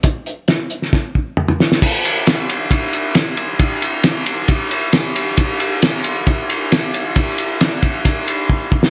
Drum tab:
CC |----------------|x---------------|----------------|----------------|
RD |----------------|--x-x-x-x-x-x-x-|x-x-x-x-x-x-x-x-|x-x-x-x-x-x-x-x-|
HH |x-x-x-x---------|----------------|----------------|----------------|
SD |----o--oo-----oo|----o-------o---|----o-------o---|----o-------o---|
T2 |------------oo--|----------------|----------------|----------------|
BD |o-------o-o-----|o-------o-------|o-------o-------|o-------o-------|

CC |----------------|
RD |x-x-x-x-x-x-----|
HH |----------------|
SD |----o----------o|
T2 |----------------|
BD |o-----o-o---o-o-|